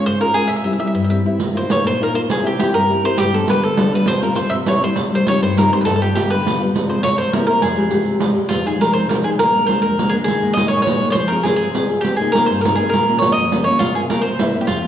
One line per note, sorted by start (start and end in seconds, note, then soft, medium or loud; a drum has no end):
0.00 0.15 G#3 soft
0.00 0.15 C#4 soft
0.00 0.15 F4 soft
0.06 0.35 G#2 medium
0.06 0.20 C5 medium
0.20 0.33 G#3 medium
0.20 0.33 C#4 soft
0.20 0.34 F4 medium
0.20 0.34 A#4 medium
0.34 0.46 G#3 soft
0.34 0.46 C#4 soft
0.34 0.47 F4 soft
0.34 0.49 G#4 medium
0.48 0.79 C3 medium
0.48 0.55 E5 medium
0.56 0.63 E5 soft
0.64 0.78 G3 soft
0.64 0.78 C4 soft
0.64 0.78 E4 soft
0.64 0.71 E5 soft
0.73 0.78 E5 soft
0.79 1.03 G3 soft
0.79 1.04 C4 soft
0.79 1.04 E4 soft
0.79 0.86 E5 medium
0.87 0.93 E5 soft
0.94 1.24 G2 medium
0.94 1.02 E5 medium
1.04 1.09 E5 soft
1.10 1.23 G3 soft
1.10 1.24 C4 soft
1.10 1.25 E4 soft
1.10 1.17 E5 medium
1.24 1.36 G3 soft
1.24 1.37 C4 soft
1.24 1.37 E4 soft
1.39 1.69 D#3 medium
1.39 riq medium
1.54 1.68 A#3 soft
1.54 1.68 D#4 soft
1.54 1.69 F4 soft
1.54 1.70 C5 medium
1.69 1.94 A#3 soft
1.69 1.94 D#4 soft
1.69 1.94 F4 soft
1.69 1.84 C#5 medium
1.69 riq medium
1.84 2.14 A#2 medium
1.84 2.00 C5 medium
2.00 2.13 A#3 soft
2.00 2.13 D#4 soft
2.00 2.13 F4 soft
2.00 2.15 A#4 medium
2.14 2.26 A#3 soft
2.14 2.26 D#4 soft
2.14 2.26 F4 soft
2.14 2.20 C5 medium
2.28 2.58 C3 medium
2.28 2.46 G#4 medium
2.28 riq medium
2.43 2.57 C4 soft
2.43 2.58 E4 soft
2.43 2.58 G4 soft
2.43 2.58 G4 medium
2.58 2.83 C4 soft
2.58 2.83 E4 soft
2.58 2.83 G4 soft
2.58 2.74 G4 medium
2.58 riq medium
2.73 3.02 G2 medium
2.73 3.02 A#4 medium
2.89 3.02 C4 soft
2.89 3.03 E4 soft
2.89 3.03 G4 medium
3.03 3.15 C4 soft
3.03 3.15 E4 soft
3.03 3.15 G4 medium
3.03 3.17 C5 loud
3.17 3.46 G2 medium
3.17 3.34 G4 medium
3.17 riq medium
3.32 3.46 G3 soft
3.32 3.46 B3 soft
3.32 3.47 D4 soft
3.32 3.47 A4 medium
3.47 3.71 G3 soft
3.47 3.71 B3 soft
3.47 3.72 D4 soft
3.47 3.62 B4 medium
3.47 riq medium
3.62 3.91 D3 medium
3.62 3.93 A4 medium
3.77 3.90 G3 medium
3.77 3.90 B3 soft
3.77 3.91 D4 medium
3.77 riq medium
3.91 4.03 G3 soft
3.91 4.03 B3 soft
3.91 4.03 D4 medium
3.95 4.07 B4 medium
4.06 4.35 C3 medium
4.06 4.21 C5 loud
4.06 riq medium
4.22 4.35 G3 soft
4.22 4.35 C4 soft
4.22 4.36 F4 soft
4.22 4.36 A#4 medium
4.35 4.48 G3 soft
4.35 4.48 C4 soft
4.35 4.48 F4 soft
4.35 4.51 C5 medium
4.35 riq medium
4.50 4.80 C3 medium
4.50 4.55 E5 medium
4.65 4.79 G3 soft
4.65 4.80 C4 soft
4.65 4.80 E4 soft
4.65 4.82 C#5 medium
4.65 riq medium
4.80 4.92 G3 soft
4.80 4.93 C4 soft
4.80 4.93 E4 medium
4.80 4.96 C5 medium
4.96 5.25 C3 soft
4.96 riq medium
5.12 5.26 G3 soft
5.12 5.26 C4 soft
5.12 5.27 D#4 soft
5.12 5.27 C5 medium
5.27 5.51 G3 soft
5.27 5.51 C4 soft
5.27 5.52 D#4 soft
5.27 5.41 C#5 medium
5.27 riq medium
5.42 5.71 G2 medium
5.42 5.58 C5 medium
5.57 5.72 G3 soft
5.57 5.72 C4 soft
5.57 5.72 D#4 soft
5.57 5.72 A#4 medium
5.57 riq medium
5.73 5.84 G3 soft
5.73 5.84 C4 soft
5.73 5.84 D#4 medium
5.73 5.81 C5 medium
5.81 5.85 B4 medium
5.85 6.15 G2 medium
5.85 5.95 A4 medium
5.85 riq medium
5.96 6.00 A4 soft
6.01 6.14 G3 soft
6.01 6.15 B3 soft
6.01 6.15 F4 soft
6.01 6.14 G4 medium
6.15 6.39 G3 soft
6.15 6.39 B3 soft
6.15 6.40 F4 medium
6.15 6.29 G4 medium
6.15 riq medium
6.30 6.59 D3 medium
6.30 6.61 B4 medium
6.45 6.58 G3 soft
6.45 6.59 B3 soft
6.45 6.59 F4 soft
6.45 riq medium
6.60 6.71 G3 soft
6.60 6.71 B3 soft
6.60 6.71 F4 soft
6.74 7.03 C3 medium
6.74 riq medium
6.89 7.02 G#3 soft
6.89 7.02 C4 soft
6.89 7.02 F4 soft
6.89 7.02 C5 medium
7.03 7.14 G#3 soft
7.03 7.14 C4 soft
7.03 7.15 F4 soft
7.03 7.16 C#5 medium
7.03 riq medium
7.18 7.47 C3 medium
7.18 7.32 C5 medium
7.33 7.46 A#3 soft
7.33 7.47 C4 soft
7.33 7.47 E4 medium
7.33 7.46 A#4 medium
7.33 riq medium
7.47 7.58 A#3 soft
7.47 7.59 C4 soft
7.47 7.59 E4 soft
7.47 7.60 A#4 medium
7.61 7.90 F2 medium
7.61 8.17 G#4 medium
7.61 riq medium
7.76 7.88 G#3 soft
7.76 7.88 F4 soft
7.76 7.89 G4 soft
7.90 8.14 G#3 soft
7.90 8.14 F4 soft
7.90 8.15 G4 soft
7.90 riq soft
8.04 8.34 C3 medium
8.04 riq soft
8.19 8.32 G#3 soft
8.19 8.32 F4 soft
8.19 8.33 G4 soft
8.19 riq medium
8.33 8.46 G#3 soft
8.33 8.46 F4 soft
8.33 8.46 G4 soft
8.49 8.79 F2 medium
8.49 8.64 F4 medium
8.49 riq medium
8.65 8.77 F3 soft
8.65 8.78 G#3 soft
8.65 8.78 D#4 soft
8.65 8.81 G#4 medium
8.78 9.03 F3 soft
8.78 9.04 G#3 soft
8.78 9.04 D#4 soft
8.78 8.93 A#4 medium
8.78 riq medium
8.93 9.24 C3 medium
8.93 9.09 C5 medium
9.09 9.23 F3 soft
9.09 9.23 G#3 soft
9.09 9.24 D#4 soft
9.09 9.14 A#4 medium
9.09 riq medium
9.24 9.36 F3 soft
9.24 9.36 G#3 soft
9.24 9.36 D#4 soft
9.24 9.29 G#4 medium
9.39 9.68 A#2 medium
9.39 9.66 A#4 medium
9.39 riq soft
9.54 9.67 G#3 soft
9.54 9.68 A#3 soft
9.54 9.68 D4 soft
9.67 9.93 G#3 soft
9.67 9.93 A#3 soft
9.67 9.93 D4 soft
9.67 9.81 C5 medium
9.67 riq soft
9.82 10.12 F2 medium
9.82 10.10 A#4 medium
9.99 10.11 G#3 soft
9.99 10.11 A#3 soft
9.99 10.11 D4 soft
9.99 riq medium
10.09 10.24 G#3 soft
10.09 10.24 A#3 soft
10.09 10.24 D4 soft
10.09 10.14 G#4 medium
10.24 10.55 D#3 medium
10.24 10.53 G#4 medium
10.24 riq medium
10.42 10.56 G#3 soft
10.42 10.56 A#3 soft
10.42 10.57 D#4 soft
10.53 10.81 G#3 soft
10.53 10.68 D#5 loud
10.53 riq medium
10.57 10.81 A#3 soft
10.57 10.81 D#4 soft
10.68 10.81 C#5 loud
10.72 11.00 A#2 medium
10.82 11.07 C#5 medium
10.86 10.99 G#3 soft
10.86 11.00 A#3 soft
10.86 11.00 D#4 medium
10.86 riq medium
11.00 11.12 G#3 soft
11.00 11.12 A#3 soft
11.00 11.12 D#4 medium
11.10 11.29 C5 medium
11.10 11.14 C#5 medium
11.15 11.43 F3 medium
11.15 riq soft
11.28 11.44 C4 soft
11.28 11.45 F4 soft
11.28 11.44 A#4 medium
11.32 11.45 G#4 soft
11.43 11.69 C4 soft
11.43 11.70 F4 soft
11.43 11.55 G#4 medium
11.43 11.69 G#4 soft
11.43 riq medium
11.56 11.99 G#4 medium
11.56 riq soft
11.60 11.89 C3 medium
11.74 11.88 C4 soft
11.74 11.89 F4 soft
11.74 11.89 G#4 soft
11.74 riq medium
11.89 12.01 C4 soft
11.89 12.01 F4 soft
11.89 12.02 G#4 soft
11.89 riq soft
12.01 12.33 C3 medium
12.01 12.16 G4 medium
12.01 riq soft
12.17 12.33 A#3 soft
12.17 12.33 C4 soft
12.17 12.32 G#4 medium
12.21 12.34 D#4 soft
12.32 12.59 A#3 soft
12.32 12.58 C4 soft
12.32 12.59 D#4 soft
12.32 12.46 A#4 medium
12.32 riq medium
12.46 12.78 G2 medium
12.46 12.61 C5 medium
12.61 12.78 A#4 medium
12.65 12.78 A#3 soft
12.65 12.78 C4 soft
12.65 12.78 D#4 soft
12.65 riq medium
12.76 12.90 A#3 soft
12.76 12.90 C4 soft
12.76 12.91 D#4 soft
12.76 12.92 G#4 medium
12.90 13.22 A#2 medium
12.90 13.18 A#4 medium
12.90 riq medium
13.08 13.21 A#3 soft
13.08 13.21 C#4 soft
13.08 13.22 F4 soft
13.19 13.46 A#3 soft
13.19 13.46 C#4 soft
13.19 13.32 C#5 medium
13.19 riq medium
13.23 13.46 F4 soft
13.32 13.62 D#5 medium
13.37 13.66 F2 medium
13.52 13.65 A#3 soft
13.52 13.65 C#4 soft
13.52 13.66 F4 medium
13.52 riq medium
13.64 13.77 A#3 soft
13.64 13.78 C#4 soft
13.64 13.78 F4 soft
13.64 13.80 C#5 medium
13.79 14.09 C3 medium
13.79 13.95 F4 medium
13.79 riq medium
13.95 14.08 A#3 soft
13.95 14.08 C4 soft
13.95 14.09 F4 soft
13.95 14.00 G#4 medium
14.09 14.21 A#3 soft
14.09 14.21 C4 soft
14.09 14.21 F4 medium
14.09 14.21 A#4 medium
14.09 riq medium
14.22 14.52 C3 medium
14.22 14.57 C5 medium
14.39 14.52 A#3 soft
14.39 14.53 C4 soft
14.39 14.53 E4 medium
14.39 riq medium
14.54 14.65 A#3 soft
14.54 14.65 C4 soft
14.54 14.65 E4 soft
14.61 14.67 G4 soft
14.67 14.87 F2 medium
14.67 14.87 F4 medium
14.67 riq medium
14.83 14.87 F3 soft
14.83 14.87 G#3 soft
14.83 14.87 C4 soft